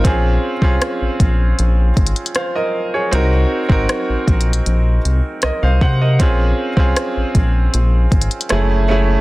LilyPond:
<<
  \new Staff \with { instrumentName = "Grand piano" } { \time 4/4 \key bes \minor \tempo 4 = 78 << { r2. <c'' f''>16 <bes' ees''>8 <aes' des''>16~ | <aes' des''>16 r2 r8. <bes' ees''>16 <c'' f''>16 <c'' ges''>16 <bes' ees''>16~ | <bes' ees''>16 r2. r8. | } \\ { <c' des' f' aes'>8 r16 <c' des' f' aes'>4.~ <c' des' f' aes'>16 r4. | <c' ees' ges' bes'>8 r16 <c' ees' ges' bes'>4.~ <c' ees' ges' bes'>16 r4. | <c' des' f' aes'>8 r16 <c' des' f' aes'>4.~ <c' des' f' aes'>16 r8 <a des' fes' aes'>8 <a des' fes' aes'>8 | } >> }
  \new Staff \with { instrumentName = "Analog synth bass" } { \clef bass \time 4/4 \key bes \minor bes,,8 r16 c,16 r16 bes,,16 bes,,8 bes,,8 aes,,16 r4 r16 | c,8 r16 aes,,16 r16 bes,,16 bes,,8 bes,,8 c,16 r16 c,16 c,16 c8 | bes,,8 r16 c,16 r16 bes,,16 bes,,8 bes,,8 aes,,16 r16 ges,,4 | }
  \new DrumStaff \with { instrumentName = "Drums" } \drummode { \time 4/4 <hh bd>8. bd16 <hh ss>8 <hh bd>8 hh8 <hh bd>32 hh32 hh32 hh32 <hh ss>4 | hh8. bd16 \tuplet 3/2 { <hh ss>16 r16 r16 <hh bd>16 hh16 hh16 } hh8 hh8 <hh ss>8 bd8 | <hh bd>8. bd16 <hh ss>8 <hh bd>8 hh8 <hh bd>32 hh32 hh32 hh32 <hh ss>4 | }
>>